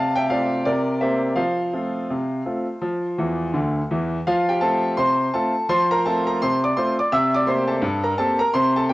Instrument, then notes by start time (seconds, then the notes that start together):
grand piano
Already playing: C3 F5 A5
0.16 E5 G5
0.30 A3 C4 F4 D5 F5
0.65 C3 A#4 D5
1.01 A#3 C4 G4 C5 E5
1.36 F3 C5 F5
1.73 A3 C4 F4
2.10 C3
2.46 A3 C4 F4
2.81 F3
3.18 E2 E3
3.53 D2 D3
3.91 E2 E3
4.27 F3 F4 F5
4.49 G4 G5
4.61 A3 C4 F4 A4 A5
4.97 C3 C5 C6
5.34 A3 C4 F4 A4 A5
5.69 F3 C5 C6
5.91 A#4 A#5
6.06 A3 C4 F4 A4 A5
6.27 A#4 A#5
6.42 C3 C5 C6
6.64 D5 D6
6.77 A3 C4 F4 C5 C6
6.99 D5 D6
7.12 C3 E5 E6
7.34 D5 D6
7.47 A#3 C4 G4 C5 C6
7.68 A4 A5
7.82 G2
8.04 A#4 A#5
8.18 A#3 C4 G4 A4 A5
8.39 A#4 A#5
8.54 C3 C5 C6
8.76 A4 A5
8.89 A#3 C4 G5